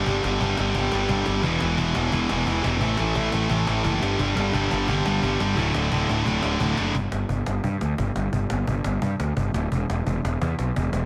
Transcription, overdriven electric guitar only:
\new Staff \with { instrumentName = "Overdriven electric guitar" } { \clef bass \time 4/4 \key g \lydian \tempo 4 = 174 <g, d g>8 <g, d g>8 <g, d g>8 <g, d g>8 <g, d g>8 <g, d g>8 <g, d g>8 <g, d g>8 | <e, b, e>8 <e, b, e>8 <e, b, e>8 <e, b, e>8 <e, b, e>8 <e, b, e>8 <e, b, e>8 <e, b, e>8 | <a, e a>8 <a, e a>8 <a, e a>8 <a, e a>8 <a, e a>8 <a, e a>8 <a, e a>8 <g, d g>8 | <g, d g>8 <g, d g>8 <g, d g>8 <g, d g>8 <g, d g>8 <g, d g>8 <g, d g>8 <g, d g>8 |
<d, a, d>8 <d, a, d>8 <d, a, d>8 <d, a, d>8 <d, a, d>8 <d, a, d>8 <d, a, d>8 <d, a, d>8 | r1 | r1 | r1 | }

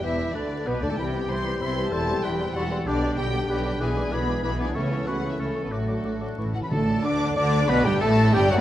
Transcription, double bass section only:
\new Staff \with { instrumentName = "Double bass section" } { \clef bass \time 3/4 \key c \lydian \tempo 4 = 189 e,,4 d,4 b,,8 d,16 r16 | c,4 c,4 c,4 | e,,4 e,,4 e,,4 | \key d \major b,,4 b,,4 b,,4 |
b,,4 b,,4 b,,4 | cis,4 cis,4 cis,4 | a,,4 a,,4 a,,4 | a,,4 d,4 d,4 |
b,,8 g,,8 a,,4 g,,8 fis,,16 r16 | }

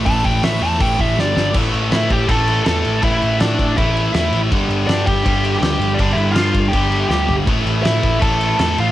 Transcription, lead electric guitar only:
\new Staff \with { instrumentName = "Lead electric guitar" } { \time 4/4 \key g \major \tempo 4 = 162 a''8 g''8 e''8 a''8 g''8 e''8 d''4 | \key g \mixolydian r4 <e' e''>8 <g' g''>8 <a' a''>4 <a' a''>4 | <e' e''>4 <d' d''>4 <e' e''>4 <e' e''>8. r16 | r4 <d' d''>8 <g' g''>4. <g' g''>4 |
<d' d''>8 <e' e''>8 <f' f''>4 <g' g''>4 <g' g''>8. r16 | r4 <e' e''>4 <a' a''>4 <a' a''>8 <f' f''>8 | }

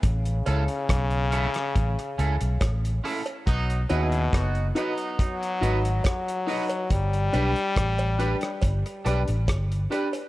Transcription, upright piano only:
\new Staff \with { instrumentName = "Upright piano" } { \time 4/4 \key a \lydian \tempo 4 = 70 r1 | r8 <dis' fis' b' dis''>16 r8. <dis' fis' b' dis''>16 r8. <dis' fis' b' dis''>16 r8. <dis' fis' b' dis''>16 <b' dis''>16 | r8 <d' g' b' d''>16 r8. <d' g' b' d''>16 r8. <d' g' b' d''>16 r8. <d' g' b' d''>16 <b' d''>16 | }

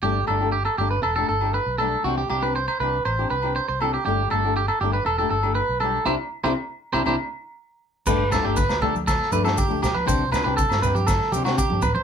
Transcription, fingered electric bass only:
\new Staff \with { instrumentName = "Fingered electric bass" } { \clef bass \time 4/4 \key g \major \tempo 4 = 120 g,,8 g,,4 g,,8 e,,8 g,,8. b,,8. | c,8 c,4 c,8 a,,8 c,8. c,8. | g,,8 g,,4 g,,8 e,,8 g,,8. b,,8. | c,16 r8 c,16 r8. c,16 c,16 r4. r16 |
g,,8. g,,8 d,4~ d,16 g,8. d,16 b,,16 r16 | c,8. c,8 g,4~ g,16 c8. g,16 a,,16 r16 | }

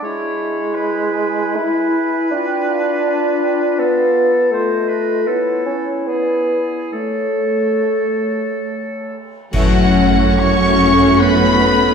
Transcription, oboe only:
\new Staff \with { instrumentName = "Oboe" } { \time 3/4 \key a \major \tempo 4 = 76 cis''4 b'4 b'4~ | b'2 a'4 | c''8 b'8 a'4 gis'4 | a'2~ a'8 r8 |
fis'4 cis''4 b'4 | }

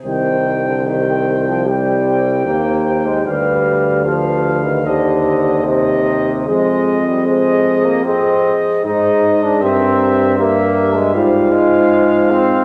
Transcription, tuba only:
\new Staff \with { instrumentName = "Tuba" } { \clef bass \time 4/4 \key c \minor \tempo 4 = 76 c,2. ees,4 | d,2 ees,2 | f,2~ f,8 r8 aes,4 | g,2 aes,2 | }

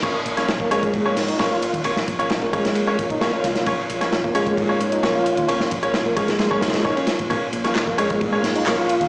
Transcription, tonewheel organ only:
\new Staff \with { instrumentName = "Tonewheel organ" } { \time 4/4 \key bes \minor \tempo 4 = 132 bes16 r4 bes16 aes4 r16 ees'16 bes16 f'8. | bes16 r4 bes16 aes4 r16 ees'16 bes16 f'8. | bes16 r4 bes16 aes4 r16 ees'16 bes16 f'8. | bes16 r4 bes16 aes4 r16 aes16 ees'16 des'16 r8 |
bes16 r4 bes16 aes4 r16 ees'16 bes16 f'8. | }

